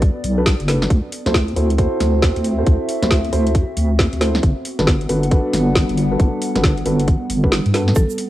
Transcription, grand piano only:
0.38 0.45 D4 medium
0.38 0.45 F#4 medium
0.38 0.45 A4 medium
0.38 0.45 B4 medium
0.68 0.86 D4 medium
0.68 0.86 F#4 medium
0.68 0.86 A4 medium
0.68 0.86 B4 medium
1.26 1.34 E4 loud
1.26 1.34 F#4 medium
1.26 1.34 A4 medium
1.26 1.34 C5 loud
1.56 1.69 E4 medium
1.56 1.69 F#4 medium
1.56 1.69 A4 medium
1.56 1.69 C5 medium
1.78 2.55 E4 medium
1.78 2.55 F#4 medium
1.78 2.55 A4 medium
1.78 2.55 C5 loud
2.58 2.99 E4 medium
2.58 2.99 F#4 medium
2.58 2.99 A4 medium
2.58 2.99 C5 medium
3.02 3.17 E4 medium
3.02 3.17 F#4 medium
3.02 3.17 A4 medium
3.02 3.17 C5 medium
3.33 3.50 E4 medium
3.33 3.50 F#4 medium
3.33 3.50 A4 medium
3.33 3.50 C5 medium
4.21 4.34 E4 medium
4.21 4.34 F#4 medium
4.21 4.34 A4 medium
4.21 4.34 C5 medium
4.79 4.86 D4 loud
4.79 4.86 F#4 medium
4.79 4.86 A4 medium
4.79 4.86 B4 loud
5.09 5.22 D4 medium
5.09 5.22 F#4 medium
5.09 5.22 A4 medium
5.09 5.22 B4 medium
5.31 6.08 D4 medium
5.31 6.08 F#4 medium
5.31 6.08 A4 medium
5.31 6.08 B4 loud
6.11 6.52 D4 medium
6.11 6.52 F#4 medium
6.11 6.52 A4 medium
6.11 6.52 B4 medium
6.55 6.70 D4 medium
6.55 6.70 F#4 medium
6.55 6.70 A4 medium
6.55 6.70 B4 medium
6.86 7.03 D4 medium
6.86 7.03 F#4 medium
6.86 7.03 A4 medium
6.86 7.03 B4 medium
7.44 7.51 D4 medium
7.44 7.51 F#4 medium
7.44 7.51 A4 medium
7.44 7.51 B4 medium
7.74 7.92 D4 medium
7.74 7.92 F#4 medium
7.74 7.92 A4 medium
7.74 7.91 B4 medium

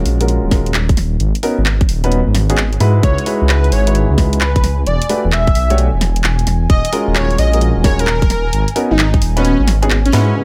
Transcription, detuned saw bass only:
0.06 0.38 A#1 loud
0.44 0.72 D#1 medium
0.74 0.94 D#1 medium
0.97 1.17 D#1 medium
1.20 1.32 G#1 loud
1.58 1.86 G#1 medium
1.89 2.22 D#1 loud
2.27 2.55 G#1 medium
2.58 2.77 G#1 medium
2.80 3.00 G#2 medium
3.03 3.15 C#2 loud
3.41 3.69 C#2 loud
3.72 4.05 G#1 loud
4.10 4.38 C#2 medium
4.41 4.60 C#2 medium
4.64 4.83 C#2 medium
4.87 4.98 E1 loud
5.24 5.53 E1 medium
5.55 5.88 B1 loud
5.93 6.21 E1 medium
6.24 6.43 E1 medium
6.47 6.66 E1 medium
6.70 6.82 D#1 loud
7.08 7.36 D#1 medium
7.38 7.71 A#1 loud
7.76 8.04 D#1 medium
8.07 8.27 D#1 medium
8.30 8.50 D#1 medium
8.53 8.65 G#1 loud
8.91 9.19 G#1 medium
9.22 9.54 D#1 loud
9.60 9.88 G#1 medium
9.90 10.10 G#1 medium
10.13 10.33 G#2 medium

